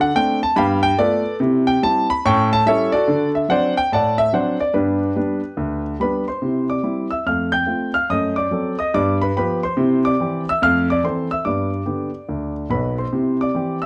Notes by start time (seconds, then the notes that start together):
Already playing: D3
0.01 F#5
0.15 A3 C4 D4 G5
0.43 A5
0.56 G2 B3 F5 G5 B5
0.83 G5
0.98 A3 B3 F4 A4 B4 D5
1.40 C3 E4
1.67 G5
1.83 G3 C4 E4 A5
2.10 B5
2.25 A2 C#4 G5 A5 C#6
2.53 A5
2.66 G3 C#4 E4 A4 C#5 E5
2.92 F#4 A4 D5
3.08 D3 F#4
3.35 E5
3.49 F#3 C4 D4 C5 D5 F#5
3.77 G5
3.92 A2 D5 F#5 A5
4.18 E5
4.33 F#3 C4 D4 C5 D5 F#5
4.60 D5
4.74 G2 B3 D4 G4 B4
5.16 G3 B3 D4
5.57 D2
6.00 G3 B3 D4 B4 B5
6.28 C5 C6
6.42 C3 E4
6.70 D5 D6
6.83 G3 C4 E4
7.11 E5 E6
7.26 F2 A3 F5 F6
7.52 G5 G6
7.66 A3 C4 F4
7.94 F5 F6
8.10 F#2 A3 D#5 D#6
8.36 D5 D6
8.51 F#3 C4 A4
8.79 D#5 D#6
8.94 G2 B3 D5 D6
9.22 B4 B5
9.37 F3 B3 G4 B4 B5
9.63 C5 C6
9.77 C3 E4
10.05 D5 D6
10.20 E3 C4 G4
10.49 E5 E6
10.62 F2 A3 F5 F6
10.90 D5 D6
11.04 E3 C4 A4 C5 C6
11.31 E5 E6
11.45 G2 B3 D5 D6
11.86 D3 B3 G4
12.29 D2
12.70 B1 B2 B4 B5
12.98 C5 C6
13.13 C3 E4
13.41 D5 D6
13.54 E3 C4 G4
13.82 E6